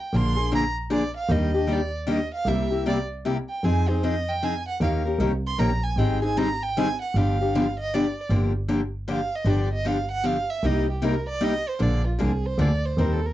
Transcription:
0.00 violin G5
0.13 double bass A#1, steel-string acoustic guitar D3 F3 A#3 D4 G#4, violin C6
0.36 steel-string acoustic guitar A#3 D4 G#4
0.52 steel-string acoustic guitar D3 F3 A#3 D4 G#4, violin A#5
0.90 steel-string acoustic guitar D3 F3 A#3 D4 G#4, violin D5
1.17 violin F5
1.29 double bass D#2, steel-string acoustic guitar D#3 G3 A#3 D4 G4, violin D#5
1.54 steel-string acoustic guitar A#3 D4 G4
1.67 steel-string acoustic guitar D#3 G3 A#3 D4 G4
1.72 violin D5
2.07 steel-string acoustic guitar D#3 G3 A#3 D4 G4, violin D#5
2.34 violin F5
2.46 double bass C2, steel-string acoustic guitar C3 G3 A#3 E4 G4, violin E5
2.71 steel-string acoustic guitar A#3 E4 G4
2.86 steel-string acoustic guitar C3 G3 A#3 E4 G4, violin D5
3.25 steel-string acoustic guitar C3 G3 A#3 E4 G4
3.49 violin G5
3.64 double bass F2, steel-string acoustic guitar F3 C4 D#4 G#4, violin G#5
3.88 steel-string acoustic guitar C4 D#4 G#4, violin C5
4.03 steel-string acoustic guitar F3 C4 D#4 G#4, violin D#5
4.29 violin G5
4.43 steel-string acoustic guitar F3 C4 D#4 G#4, violin G#5
4.68 violin F#5
4.81 double bass D#2, steel-string acoustic guitar D#3 A#3 C#4 G4 A#4, violin F5
5.05 steel-string acoustic guitar C#4 G4 A#4
5.19 double bass C2, steel-string acoustic guitar D#3 A#3 C#4 G4 A#4
5.47 violin C6
5.58 double bass A#1, steel-string acoustic guitar D#3 A#3 C#4 G4 A#4, violin A#5
5.83 violin G#5
5.97 double bass G#1, steel-string acoustic guitar D#3 G3 C4 D#4 G#4, violin G5
6.22 steel-string acoustic guitar C4 D#4 G#4, violin G#5
6.37 steel-string acoustic guitar D#3 G3 C4 D#4 G#4, violin A#5
6.63 violin G5
6.77 steel-string acoustic guitar D#3 G3 C4 D#4 G#4, violin G#5
7.02 violin F#5
7.15 double bass G1, steel-string acoustic guitar D3 F3 B3 D4 G4, violin F5
7.41 steel-string acoustic guitar B3 D4 G4
7.55 steel-string acoustic guitar D3 F3 B3 D4 G4
7.80 violin D#5
7.94 steel-string acoustic guitar D3 F3 B3 D4 G4, violin D5
8.30 double bass G1, steel-string acoustic guitar D3 F3 A#3 D4 G4
8.68 steel-string acoustic guitar D3 F3 A#3 D4 G4
9.08 steel-string acoustic guitar D3 F3 A#3 D4 G4, violin F5
9.35 violin D#5
9.45 double bass G1, steel-string acoustic guitar D3 F3 B3 D4 G4
9.50 violin D5
9.73 violin D#5
9.85 steel-string acoustic guitar D3 F3 B3 D4 G4, violin F5
10.12 violin F#5
10.24 steel-string acoustic guitar D3 F3 B3 D4 G4, violin F5
10.50 violin E5
10.63 double bass C2, steel-string acoustic guitar C3 G3 A#3 D#4 G4, violin D#5
10.91 violin G4
11.02 steel-string acoustic guitar C3 G3 A#3 D#4 G4, violin A#4
11.29 violin D5
11.41 steel-string acoustic guitar C3 G3 A#3 D#4 G4, violin D#5
11.68 violin C5
11.79 double bass A#1, steel-string acoustic guitar D3 F3 A#3 D4 G#4, violin D5
12.07 violin F4
12.19 double bass C2, steel-string acoustic guitar D3 F3 A#3 D4 G#4, violin G#4
12.46 violin C5
12.58 double bass D2, steel-string acoustic guitar D3 F3 A#3 D4 G#4, violin D5
12.86 violin C5
12.97 double bass D#2, steel-string acoustic guitar D#3 G3 C4 G4 C5, violin A#4
13.13 violin A4
13.26 violin A#4

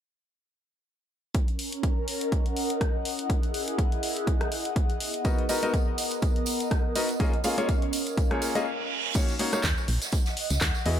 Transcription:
1.35 analog synth pad C#4, kick, closed hi-hat
1.48 analog synth pad A#4, closed hi-hat
1.59 open hi-hat
1.73 closed hi-hat
1.83 kick, closed hi-hat
2.08 open hi-hat
2.12 analog synth pad D#5 F#5
2.21 closed hi-hat
2.32 kick, closed hi-hat
2.46 closed hi-hat
2.57 open hi-hat
2.70 closed hi-hat
2.81 kick, cross-stick, closed hi-hat
3.05 analog synth pad E4, open hi-hat
3.18 analog synth pad G#4, closed hi-hat
3.30 kick, closed hi-hat
3.43 closed hi-hat
3.54 open hi-hat
3.68 closed hi-hat
3.78 kick, closed hi-hat
3.92 closed hi-hat
4.03 open hi-hat
4.17 closed hi-hat
4.27 kick, closed hi-hat
4.41 cross-stick, closed hi-hat
4.52 open hi-hat
4.65 closed hi-hat
4.76 kick, closed hi-hat
4.90 closed hi-hat
5.00 analog synth pad B3, open hi-hat
5.14 closed hi-hat
5.24 grand piano B3 D#4 F#4 A#4 D#5, kick, closed hi-hat, tambourine
5.31 analog synth pad A#4
5.38 closed hi-hat
5.49 grand piano B3 D#4 F#4 A#4 D#5, open hi-hat, tambourine
5.62 grand piano B3 D#4 F#4 A#4 D#5, closed hi-hat, tambourine
5.74 kick, closed hi-hat, tambourine
5.98 open hi-hat, tambourine
6.11 closed hi-hat, tambourine
6.22 kick, closed hi-hat, tambourine
6.36 closed hi-hat
6.46 open hi-hat, tambourine
6.60 closed hi-hat, tambourine
6.71 kick, cross-stick, closed hi-hat, tambourine
6.95 grand piano B3 D#4 F#4 A#4 D#5, open hi-hat, tambourine
7.09 closed hi-hat, tambourine
7.20 grand piano A#3 C#4 F4 G#4 D#5, analog synth pad C#4, kick, closed hi-hat, tambourine
7.33 closed hi-hat
7.44 grand piano A#3 C#4 F4 G#4 F5, open hi-hat, tambourine
7.58 grand piano A#3 C#4 F4 G#4 C#5, closed hi-hat, tambourine
7.69 kick, closed hi-hat, tambourine
7.79 analog synth pad F5, closed hi-hat
7.93 open hi-hat, tambourine
8.07 analog synth pad G#5, closed hi-hat, tambourine
8.17 kick, closed hi-hat, tambourine, reverse cymbal
8.31 grand piano A#3 C#4 F4 G#4 C#5, cross-stick, closed hi-hat
8.42 open hi-hat, tambourine
8.55 grand piano A#3 C#4 F4 G#4 D#5, closed hi-hat, tambourine
9.14 grand piano A#3 C#4 D#4 F#4 C#5, kick, closed hi-hat, crash, tambourine
9.29 closed hi-hat, tambourine
9.39 grand piano A#3 C#4 D#4 F#4 C#5, closed hi-hat, open hi-hat
9.53 grand piano A#3 C#4 D#4 F#4 C#5, cross-stick, closed hi-hat, tambourine
9.63 fm bass D#2, kick, snare, clap, closed hi-hat, tambourine
9.77 tambourine
9.88 fm bass A#1, analog synth pad F#5, closed hi-hat, open hi-hat
9.92 analog synth pad D#5
10.02 snare, closed hi-hat, tambourine
10.12 kick, closed hi-hat, tambourine
10.26 snare, closed hi-hat, tambourine
10.37 closed hi-hat, open hi-hat
10.50 fm bass C#2, snare, closed hi-hat, tambourine
10.61 fm bass D#2, kick, cross-stick, snare, clap, closed hi-hat, tambourine
10.75 tambourine
10.86 fm bass E2, grand piano B3 E4 F#4 G#4 D#5, analog synth pad E4, closed hi-hat, open hi-hat

